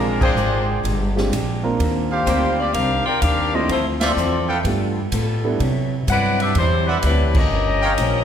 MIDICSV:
0, 0, Header, 1, 8, 480
1, 0, Start_track
1, 0, Tempo, 475813
1, 1808, Time_signature, 4, 2, 24, 8
1, 8314, End_track
2, 0, Start_track
2, 0, Title_t, "Trumpet section"
2, 0, Program_c, 0, 61
2, 206, Note_on_c, 0, 79, 92
2, 208, Note_on_c, 0, 68, 83
2, 209, Note_on_c, 0, 74, 82
2, 210, Note_on_c, 0, 72, 75
2, 814, Note_off_c, 0, 79, 0
2, 815, Note_off_c, 0, 68, 0
2, 815, Note_off_c, 0, 74, 0
2, 816, Note_off_c, 0, 72, 0
2, 2127, Note_on_c, 0, 72, 84
2, 2127, Note_on_c, 0, 77, 96
2, 2129, Note_on_c, 0, 67, 90
2, 2130, Note_on_c, 0, 74, 77
2, 2734, Note_off_c, 0, 72, 0
2, 2734, Note_off_c, 0, 77, 0
2, 2735, Note_off_c, 0, 67, 0
2, 2735, Note_off_c, 0, 74, 0
2, 4038, Note_on_c, 0, 74, 76
2, 4039, Note_on_c, 0, 65, 87
2, 4039, Note_on_c, 0, 72, 84
2, 4039, Note_on_c, 0, 76, 100
2, 4148, Note_off_c, 0, 74, 0
2, 4149, Note_off_c, 0, 65, 0
2, 4149, Note_off_c, 0, 72, 0
2, 4149, Note_off_c, 0, 76, 0
2, 4516, Note_on_c, 0, 69, 83
2, 4517, Note_on_c, 0, 71, 76
2, 4517, Note_on_c, 0, 77, 76
2, 4517, Note_on_c, 0, 79, 91
2, 4628, Note_off_c, 0, 69, 0
2, 4628, Note_off_c, 0, 71, 0
2, 4628, Note_off_c, 0, 77, 0
2, 4628, Note_off_c, 0, 79, 0
2, 6925, Note_on_c, 0, 74, 79
2, 6925, Note_on_c, 0, 76, 82
2, 6926, Note_on_c, 0, 71, 80
2, 6927, Note_on_c, 0, 78, 94
2, 7033, Note_off_c, 0, 74, 0
2, 7034, Note_off_c, 0, 71, 0
2, 7034, Note_off_c, 0, 76, 0
2, 7035, Note_off_c, 0, 78, 0
2, 7884, Note_on_c, 0, 73, 84
2, 7886, Note_on_c, 0, 79, 93
2, 7887, Note_on_c, 0, 70, 90
2, 7889, Note_on_c, 0, 77, 80
2, 7993, Note_off_c, 0, 73, 0
2, 7995, Note_off_c, 0, 70, 0
2, 7995, Note_off_c, 0, 79, 0
2, 7996, Note_off_c, 0, 77, 0
2, 8314, End_track
3, 0, Start_track
3, 0, Title_t, "Saxophone section"
3, 0, Program_c, 1, 65
3, 0, Note_on_c, 1, 56, 69
3, 0, Note_on_c, 1, 62, 72
3, 0, Note_on_c, 1, 65, 74
3, 0, Note_on_c, 1, 70, 84
3, 221, Note_off_c, 1, 62, 0
3, 223, Note_off_c, 1, 65, 0
3, 224, Note_off_c, 1, 56, 0
3, 225, Note_off_c, 1, 70, 0
3, 233, Note_on_c, 1, 62, 80
3, 235, Note_on_c, 1, 65, 76
3, 236, Note_on_c, 1, 56, 76
3, 237, Note_on_c, 1, 72, 89
3, 669, Note_off_c, 1, 62, 0
3, 670, Note_off_c, 1, 65, 0
3, 671, Note_off_c, 1, 56, 0
3, 671, Note_off_c, 1, 72, 0
3, 2273, Note_on_c, 1, 67, 79
3, 2275, Note_on_c, 1, 65, 77
3, 2276, Note_on_c, 1, 58, 75
3, 2283, Note_on_c, 1, 72, 84
3, 2580, Note_off_c, 1, 67, 0
3, 2581, Note_off_c, 1, 65, 0
3, 2582, Note_off_c, 1, 58, 0
3, 2585, Note_off_c, 1, 72, 0
3, 2618, Note_on_c, 1, 65, 72
3, 2623, Note_on_c, 1, 58, 72
3, 2625, Note_on_c, 1, 74, 87
3, 2629, Note_on_c, 1, 67, 74
3, 2751, Note_off_c, 1, 67, 0
3, 2760, Note_off_c, 1, 65, 0
3, 2763, Note_off_c, 1, 58, 0
3, 2763, Note_on_c, 1, 67, 83
3, 2764, Note_off_c, 1, 74, 0
3, 2766, Note_on_c, 1, 77, 98
3, 2768, Note_on_c, 1, 70, 86
3, 2771, Note_on_c, 1, 62, 80
3, 3077, Note_off_c, 1, 70, 0
3, 3081, Note_on_c, 1, 74, 86
3, 3086, Note_on_c, 1, 65, 85
3, 3088, Note_off_c, 1, 67, 0
3, 3089, Note_on_c, 1, 70, 88
3, 3090, Note_off_c, 1, 77, 0
3, 3092, Note_off_c, 1, 62, 0
3, 3092, Note_on_c, 1, 79, 95
3, 3231, Note_off_c, 1, 74, 0
3, 3234, Note_off_c, 1, 65, 0
3, 3236, Note_off_c, 1, 70, 0
3, 3237, Note_off_c, 1, 79, 0
3, 3242, Note_on_c, 1, 77, 97
3, 3243, Note_on_c, 1, 62, 85
3, 3243, Note_on_c, 1, 67, 84
3, 3248, Note_on_c, 1, 70, 82
3, 3568, Note_off_c, 1, 62, 0
3, 3568, Note_off_c, 1, 67, 0
3, 3568, Note_off_c, 1, 77, 0
3, 3571, Note_off_c, 1, 70, 0
3, 3574, Note_on_c, 1, 65, 76
3, 3578, Note_on_c, 1, 58, 75
3, 3584, Note_on_c, 1, 67, 78
3, 3584, Note_on_c, 1, 75, 86
3, 3729, Note_off_c, 1, 65, 0
3, 3731, Note_off_c, 1, 58, 0
3, 3734, Note_off_c, 1, 67, 0
3, 3734, Note_off_c, 1, 75, 0
3, 3747, Note_on_c, 1, 72, 79
3, 3748, Note_on_c, 1, 64, 69
3, 3749, Note_on_c, 1, 57, 69
3, 3751, Note_on_c, 1, 65, 74
3, 3888, Note_off_c, 1, 72, 0
3, 3889, Note_off_c, 1, 64, 0
3, 3890, Note_off_c, 1, 57, 0
3, 3891, Note_off_c, 1, 65, 0
3, 4063, Note_on_c, 1, 60, 76
3, 4063, Note_on_c, 1, 65, 75
3, 4068, Note_on_c, 1, 74, 90
3, 4071, Note_on_c, 1, 69, 74
3, 4504, Note_off_c, 1, 60, 0
3, 4504, Note_off_c, 1, 65, 0
3, 4506, Note_off_c, 1, 74, 0
3, 4508, Note_off_c, 1, 69, 0
3, 6159, Note_on_c, 1, 78, 101
3, 6162, Note_on_c, 1, 64, 88
3, 6162, Note_on_c, 1, 74, 86
3, 6167, Note_on_c, 1, 71, 88
3, 6445, Note_off_c, 1, 78, 0
3, 6447, Note_off_c, 1, 64, 0
3, 6447, Note_off_c, 1, 74, 0
3, 6449, Note_off_c, 1, 71, 0
3, 6478, Note_on_c, 1, 67, 81
3, 6478, Note_on_c, 1, 71, 78
3, 6482, Note_on_c, 1, 76, 86
3, 6484, Note_on_c, 1, 62, 79
3, 6611, Note_off_c, 1, 67, 0
3, 6611, Note_off_c, 1, 71, 0
3, 6614, Note_off_c, 1, 76, 0
3, 6615, Note_off_c, 1, 62, 0
3, 6640, Note_on_c, 1, 62, 74
3, 6640, Note_on_c, 1, 72, 94
3, 6642, Note_on_c, 1, 55, 80
3, 6645, Note_on_c, 1, 64, 81
3, 6926, Note_off_c, 1, 62, 0
3, 6926, Note_off_c, 1, 72, 0
3, 6927, Note_off_c, 1, 55, 0
3, 6928, Note_off_c, 1, 64, 0
3, 6961, Note_on_c, 1, 64, 74
3, 6965, Note_on_c, 1, 55, 76
3, 6965, Note_on_c, 1, 71, 86
3, 6969, Note_on_c, 1, 62, 73
3, 7103, Note_off_c, 1, 64, 0
3, 7105, Note_off_c, 1, 55, 0
3, 7105, Note_off_c, 1, 71, 0
3, 7107, Note_off_c, 1, 62, 0
3, 7118, Note_on_c, 1, 55, 72
3, 7121, Note_on_c, 1, 64, 77
3, 7122, Note_on_c, 1, 62, 77
3, 7128, Note_on_c, 1, 71, 90
3, 7405, Note_off_c, 1, 55, 0
3, 7407, Note_off_c, 1, 62, 0
3, 7407, Note_off_c, 1, 64, 0
3, 7410, Note_off_c, 1, 71, 0
3, 7434, Note_on_c, 1, 61, 80
3, 7439, Note_on_c, 1, 67, 81
3, 7441, Note_on_c, 1, 70, 86
3, 7445, Note_on_c, 1, 75, 95
3, 8314, Note_off_c, 1, 61, 0
3, 8314, Note_off_c, 1, 67, 0
3, 8314, Note_off_c, 1, 70, 0
3, 8314, Note_off_c, 1, 75, 0
3, 8314, End_track
4, 0, Start_track
4, 0, Title_t, "Grand piano"
4, 0, Program_c, 2, 0
4, 0, Note_on_c, 2, 56, 83
4, 0, Note_on_c, 2, 60, 66
4, 0, Note_on_c, 2, 62, 73
4, 0, Note_on_c, 2, 65, 70
4, 0, Note_on_c, 2, 70, 86
4, 342, Note_off_c, 2, 56, 0
4, 343, Note_off_c, 2, 60, 0
4, 343, Note_off_c, 2, 70, 0
4, 344, Note_off_c, 2, 62, 0
4, 345, Note_off_c, 2, 65, 0
4, 1171, Note_on_c, 2, 56, 67
4, 1171, Note_on_c, 2, 65, 62
4, 1172, Note_on_c, 2, 62, 62
4, 1173, Note_on_c, 2, 60, 57
4, 1173, Note_on_c, 2, 67, 77
4, 1312, Note_off_c, 2, 56, 0
4, 1312, Note_off_c, 2, 62, 0
4, 1312, Note_off_c, 2, 65, 0
4, 1313, Note_off_c, 2, 60, 0
4, 1313, Note_off_c, 2, 67, 0
4, 1646, Note_on_c, 2, 60, 61
4, 1651, Note_on_c, 2, 58, 65
4, 1652, Note_on_c, 2, 70, 73
4, 1653, Note_on_c, 2, 62, 65
4, 1654, Note_on_c, 2, 65, 61
4, 2254, Note_off_c, 2, 60, 0
4, 2256, Note_off_c, 2, 58, 0
4, 2256, Note_off_c, 2, 70, 0
4, 2257, Note_off_c, 2, 62, 0
4, 2258, Note_off_c, 2, 65, 0
4, 3574, Note_on_c, 2, 60, 65
4, 3577, Note_on_c, 2, 57, 66
4, 3578, Note_on_c, 2, 62, 66
4, 3580, Note_on_c, 2, 64, 64
4, 3584, Note_on_c, 2, 65, 82
4, 3713, Note_off_c, 2, 60, 0
4, 3715, Note_off_c, 2, 57, 0
4, 3715, Note_off_c, 2, 62, 0
4, 3716, Note_off_c, 2, 64, 0
4, 3719, Note_off_c, 2, 65, 0
4, 4685, Note_on_c, 2, 57, 55
4, 4685, Note_on_c, 2, 59, 51
4, 4687, Note_on_c, 2, 62, 49
4, 4689, Note_on_c, 2, 65, 47
4, 4693, Note_on_c, 2, 67, 59
4, 4977, Note_off_c, 2, 57, 0
4, 4977, Note_off_c, 2, 59, 0
4, 4978, Note_off_c, 2, 62, 0
4, 4979, Note_off_c, 2, 65, 0
4, 4981, Note_off_c, 2, 67, 0
4, 5492, Note_on_c, 2, 62, 68
4, 5494, Note_on_c, 2, 55, 70
4, 5494, Note_on_c, 2, 59, 66
4, 5494, Note_on_c, 2, 69, 75
4, 5496, Note_on_c, 2, 64, 67
4, 5633, Note_off_c, 2, 62, 0
4, 5634, Note_off_c, 2, 55, 0
4, 5634, Note_off_c, 2, 59, 0
4, 5634, Note_off_c, 2, 69, 0
4, 5635, Note_off_c, 2, 64, 0
4, 8314, End_track
5, 0, Start_track
5, 0, Title_t, "Steel-string acoustic guitar"
5, 0, Program_c, 3, 25
5, 0, Note_on_c, 3, 46, 43
5, 0, Note_on_c, 3, 56, 51
5, 0, Note_on_c, 3, 62, 54
5, 0, Note_on_c, 3, 67, 60
5, 228, Note_off_c, 3, 46, 0
5, 233, Note_off_c, 3, 56, 0
5, 235, Note_off_c, 3, 62, 0
5, 240, Note_off_c, 3, 67, 0
5, 372, Note_on_c, 3, 46, 65
5, 380, Note_on_c, 3, 56, 65
5, 384, Note_on_c, 3, 62, 69
5, 394, Note_on_c, 3, 67, 70
5, 709, Note_off_c, 3, 46, 0
5, 713, Note_off_c, 3, 56, 0
5, 715, Note_off_c, 3, 62, 0
5, 720, Note_off_c, 3, 67, 0
5, 843, Note_on_c, 3, 46, 56
5, 852, Note_on_c, 3, 56, 54
5, 864, Note_on_c, 3, 62, 57
5, 869, Note_on_c, 3, 67, 56
5, 1184, Note_off_c, 3, 46, 0
5, 1188, Note_off_c, 3, 56, 0
5, 1195, Note_off_c, 3, 62, 0
5, 1197, Note_off_c, 3, 67, 0
5, 1328, Note_on_c, 3, 46, 63
5, 1333, Note_on_c, 3, 56, 71
5, 1341, Note_on_c, 3, 62, 75
5, 1347, Note_on_c, 3, 67, 77
5, 1667, Note_off_c, 3, 46, 0
5, 1669, Note_off_c, 3, 56, 0
5, 1673, Note_off_c, 3, 62, 0
5, 1676, Note_off_c, 3, 67, 0
5, 1817, Note_on_c, 3, 51, 58
5, 1830, Note_on_c, 3, 55, 55
5, 1839, Note_on_c, 3, 60, 59
5, 1848, Note_on_c, 3, 62, 59
5, 2151, Note_off_c, 3, 51, 0
5, 2158, Note_off_c, 3, 55, 0
5, 2162, Note_off_c, 3, 60, 0
5, 2167, Note_off_c, 3, 62, 0
5, 2279, Note_on_c, 3, 51, 59
5, 2285, Note_on_c, 3, 55, 75
5, 2296, Note_on_c, 3, 60, 62
5, 2300, Note_on_c, 3, 62, 67
5, 2622, Note_off_c, 3, 51, 0
5, 2625, Note_off_c, 3, 55, 0
5, 2630, Note_off_c, 3, 60, 0
5, 2632, Note_off_c, 3, 62, 0
5, 2758, Note_on_c, 3, 51, 55
5, 2770, Note_on_c, 3, 55, 47
5, 2782, Note_on_c, 3, 60, 54
5, 2783, Note_on_c, 3, 62, 54
5, 3101, Note_off_c, 3, 51, 0
5, 3107, Note_off_c, 3, 55, 0
5, 3113, Note_off_c, 3, 60, 0
5, 3114, Note_off_c, 3, 62, 0
5, 3245, Note_on_c, 3, 51, 67
5, 3251, Note_on_c, 3, 55, 59
5, 3262, Note_on_c, 3, 60, 66
5, 3265, Note_on_c, 3, 62, 64
5, 3585, Note_off_c, 3, 51, 0
5, 3588, Note_off_c, 3, 55, 0
5, 3593, Note_off_c, 3, 60, 0
5, 3595, Note_off_c, 3, 62, 0
5, 3717, Note_on_c, 3, 50, 49
5, 3731, Note_on_c, 3, 53, 54
5, 3739, Note_on_c, 3, 60, 54
5, 3748, Note_on_c, 3, 64, 54
5, 4061, Note_off_c, 3, 50, 0
5, 4068, Note_off_c, 3, 53, 0
5, 4072, Note_off_c, 3, 60, 0
5, 4077, Note_off_c, 3, 64, 0
5, 4205, Note_on_c, 3, 50, 60
5, 4206, Note_on_c, 3, 53, 62
5, 4220, Note_on_c, 3, 60, 64
5, 4223, Note_on_c, 3, 64, 68
5, 4545, Note_off_c, 3, 50, 0
5, 4545, Note_off_c, 3, 53, 0
5, 4552, Note_off_c, 3, 60, 0
5, 4554, Note_off_c, 3, 64, 0
5, 4674, Note_on_c, 3, 55, 52
5, 4688, Note_on_c, 3, 59, 56
5, 4698, Note_on_c, 3, 65, 55
5, 4703, Note_on_c, 3, 69, 58
5, 5019, Note_off_c, 3, 55, 0
5, 5027, Note_off_c, 3, 59, 0
5, 5032, Note_off_c, 3, 65, 0
5, 5034, Note_off_c, 3, 69, 0
5, 5161, Note_on_c, 3, 55, 72
5, 5171, Note_on_c, 3, 59, 68
5, 5175, Note_on_c, 3, 65, 71
5, 5181, Note_on_c, 3, 69, 70
5, 5503, Note_off_c, 3, 55, 0
5, 5508, Note_off_c, 3, 59, 0
5, 5510, Note_off_c, 3, 65, 0
5, 5513, Note_off_c, 3, 69, 0
5, 5643, Note_on_c, 3, 48, 55
5, 5650, Note_on_c, 3, 54, 60
5, 5670, Note_on_c, 3, 59, 59
5, 5673, Note_on_c, 3, 64, 55
5, 5984, Note_off_c, 3, 48, 0
5, 5988, Note_off_c, 3, 54, 0
5, 5998, Note_off_c, 3, 59, 0
5, 5999, Note_off_c, 3, 64, 0
5, 6126, Note_on_c, 3, 48, 64
5, 6134, Note_on_c, 3, 54, 63
5, 6141, Note_on_c, 3, 59, 69
5, 6143, Note_on_c, 3, 64, 68
5, 6466, Note_off_c, 3, 48, 0
5, 6470, Note_off_c, 3, 54, 0
5, 6473, Note_off_c, 3, 59, 0
5, 6474, Note_off_c, 3, 64, 0
5, 6613, Note_on_c, 3, 48, 46
5, 6623, Note_on_c, 3, 54, 46
5, 6630, Note_on_c, 3, 59, 47
5, 6640, Note_on_c, 3, 64, 59
5, 6949, Note_off_c, 3, 48, 0
5, 6955, Note_off_c, 3, 54, 0
5, 6958, Note_off_c, 3, 59, 0
5, 6963, Note_off_c, 3, 64, 0
5, 7094, Note_on_c, 3, 48, 64
5, 7109, Note_on_c, 3, 54, 70
5, 7114, Note_on_c, 3, 59, 66
5, 7121, Note_on_c, 3, 64, 66
5, 7430, Note_off_c, 3, 48, 0
5, 7438, Note_off_c, 3, 54, 0
5, 7440, Note_off_c, 3, 59, 0
5, 7444, Note_off_c, 3, 64, 0
5, 7573, Note_on_c, 3, 43, 51
5, 7588, Note_on_c, 3, 53, 48
5, 7595, Note_on_c, 3, 58, 51
5, 7608, Note_on_c, 3, 61, 56
5, 7910, Note_off_c, 3, 43, 0
5, 7917, Note_off_c, 3, 53, 0
5, 7921, Note_off_c, 3, 58, 0
5, 7927, Note_off_c, 3, 61, 0
5, 8046, Note_on_c, 3, 43, 69
5, 8056, Note_on_c, 3, 53, 76
5, 8059, Note_on_c, 3, 58, 78
5, 8074, Note_on_c, 3, 61, 77
5, 8314, Note_off_c, 3, 43, 0
5, 8314, Note_off_c, 3, 53, 0
5, 8314, Note_off_c, 3, 58, 0
5, 8314, Note_off_c, 3, 61, 0
5, 8314, End_track
6, 0, Start_track
6, 0, Title_t, "Upright bass"
6, 0, Program_c, 4, 32
6, 0, Note_on_c, 4, 34, 84
6, 350, Note_off_c, 4, 34, 0
6, 356, Note_on_c, 4, 32, 88
6, 827, Note_off_c, 4, 32, 0
6, 850, Note_on_c, 4, 31, 81
6, 1314, Note_off_c, 4, 31, 0
6, 1336, Note_on_c, 4, 34, 88
6, 1797, Note_off_c, 4, 34, 0
6, 1810, Note_on_c, 4, 39, 85
6, 2274, Note_off_c, 4, 39, 0
6, 2287, Note_on_c, 4, 38, 93
6, 2752, Note_off_c, 4, 38, 0
6, 2772, Note_on_c, 4, 36, 88
6, 3070, Note_off_c, 4, 36, 0
6, 3246, Note_on_c, 4, 39, 92
6, 3712, Note_off_c, 4, 39, 0
6, 3721, Note_on_c, 4, 38, 81
6, 4190, Note_off_c, 4, 38, 0
6, 4201, Note_on_c, 4, 40, 85
6, 4669, Note_off_c, 4, 40, 0
6, 4684, Note_on_c, 4, 43, 79
6, 5151, Note_off_c, 4, 43, 0
6, 5164, Note_on_c, 4, 45, 91
6, 5631, Note_off_c, 4, 45, 0
6, 5650, Note_on_c, 4, 48, 81
6, 6115, Note_off_c, 4, 48, 0
6, 6129, Note_on_c, 4, 43, 88
6, 6594, Note_off_c, 4, 43, 0
6, 6608, Note_on_c, 4, 40, 82
6, 7074, Note_off_c, 4, 40, 0
6, 7094, Note_on_c, 4, 38, 91
6, 7554, Note_off_c, 4, 38, 0
6, 7560, Note_on_c, 4, 31, 86
6, 8030, Note_off_c, 4, 31, 0
6, 8053, Note_on_c, 4, 34, 93
6, 8314, Note_off_c, 4, 34, 0
6, 8314, End_track
7, 0, Start_track
7, 0, Title_t, "Muted upright bass strokes"
7, 3079, Note_on_c, 9, 29, 43
7, 3180, Note_off_c, 9, 29, 0
7, 8314, End_track
8, 0, Start_track
8, 0, Title_t, "Drums"
8, 215, Note_on_c, 9, 36, 83
8, 218, Note_on_c, 9, 49, 75
8, 316, Note_off_c, 9, 36, 0
8, 319, Note_off_c, 9, 49, 0
8, 371, Note_on_c, 9, 44, 53
8, 472, Note_off_c, 9, 44, 0
8, 854, Note_on_c, 9, 36, 26
8, 857, Note_on_c, 9, 51, 67
8, 954, Note_off_c, 9, 36, 0
8, 958, Note_off_c, 9, 51, 0
8, 1186, Note_on_c, 9, 38, 50
8, 1287, Note_off_c, 9, 38, 0
8, 1333, Note_on_c, 9, 36, 18
8, 1340, Note_on_c, 9, 44, 58
8, 1340, Note_on_c, 9, 51, 72
8, 1434, Note_off_c, 9, 36, 0
8, 1441, Note_off_c, 9, 44, 0
8, 1441, Note_off_c, 9, 51, 0
8, 1811, Note_on_c, 9, 36, 17
8, 1815, Note_on_c, 9, 51, 61
8, 1912, Note_off_c, 9, 36, 0
8, 1916, Note_off_c, 9, 51, 0
8, 2287, Note_on_c, 9, 36, 22
8, 2290, Note_on_c, 9, 44, 60
8, 2290, Note_on_c, 9, 51, 66
8, 2388, Note_off_c, 9, 36, 0
8, 2391, Note_off_c, 9, 44, 0
8, 2391, Note_off_c, 9, 51, 0
8, 2767, Note_on_c, 9, 51, 64
8, 2768, Note_on_c, 9, 36, 19
8, 2868, Note_off_c, 9, 36, 0
8, 2868, Note_off_c, 9, 51, 0
8, 3245, Note_on_c, 9, 44, 54
8, 3245, Note_on_c, 9, 51, 72
8, 3246, Note_on_c, 9, 36, 26
8, 3346, Note_off_c, 9, 44, 0
8, 3346, Note_off_c, 9, 51, 0
8, 3347, Note_off_c, 9, 36, 0
8, 3725, Note_on_c, 9, 36, 19
8, 3725, Note_on_c, 9, 51, 59
8, 3826, Note_off_c, 9, 36, 0
8, 3826, Note_off_c, 9, 51, 0
8, 4044, Note_on_c, 9, 51, 66
8, 4046, Note_on_c, 9, 38, 89
8, 4145, Note_off_c, 9, 51, 0
8, 4147, Note_off_c, 9, 38, 0
8, 4209, Note_on_c, 9, 44, 61
8, 4310, Note_off_c, 9, 44, 0
8, 4687, Note_on_c, 9, 36, 23
8, 4688, Note_on_c, 9, 51, 64
8, 4788, Note_off_c, 9, 36, 0
8, 4789, Note_off_c, 9, 51, 0
8, 5164, Note_on_c, 9, 44, 59
8, 5164, Note_on_c, 9, 51, 75
8, 5169, Note_on_c, 9, 36, 22
8, 5265, Note_off_c, 9, 44, 0
8, 5265, Note_off_c, 9, 51, 0
8, 5269, Note_off_c, 9, 36, 0
8, 5650, Note_on_c, 9, 36, 19
8, 5651, Note_on_c, 9, 51, 56
8, 5751, Note_off_c, 9, 36, 0
8, 5752, Note_off_c, 9, 51, 0
8, 6131, Note_on_c, 9, 36, 22
8, 6132, Note_on_c, 9, 44, 64
8, 6132, Note_on_c, 9, 51, 73
8, 6232, Note_off_c, 9, 36, 0
8, 6233, Note_off_c, 9, 44, 0
8, 6233, Note_off_c, 9, 51, 0
8, 6455, Note_on_c, 9, 51, 51
8, 6556, Note_off_c, 9, 51, 0
8, 6607, Note_on_c, 9, 51, 62
8, 6611, Note_on_c, 9, 36, 23
8, 6708, Note_off_c, 9, 51, 0
8, 6712, Note_off_c, 9, 36, 0
8, 7087, Note_on_c, 9, 44, 53
8, 7087, Note_on_c, 9, 51, 75
8, 7091, Note_on_c, 9, 36, 19
8, 7188, Note_off_c, 9, 44, 0
8, 7188, Note_off_c, 9, 51, 0
8, 7192, Note_off_c, 9, 36, 0
8, 7410, Note_on_c, 9, 49, 77
8, 7412, Note_on_c, 9, 36, 86
8, 7511, Note_off_c, 9, 49, 0
8, 7513, Note_off_c, 9, 36, 0
8, 8046, Note_on_c, 9, 44, 56
8, 8046, Note_on_c, 9, 51, 70
8, 8049, Note_on_c, 9, 36, 26
8, 8147, Note_off_c, 9, 44, 0
8, 8147, Note_off_c, 9, 51, 0
8, 8150, Note_off_c, 9, 36, 0
8, 8314, End_track
0, 0, End_of_file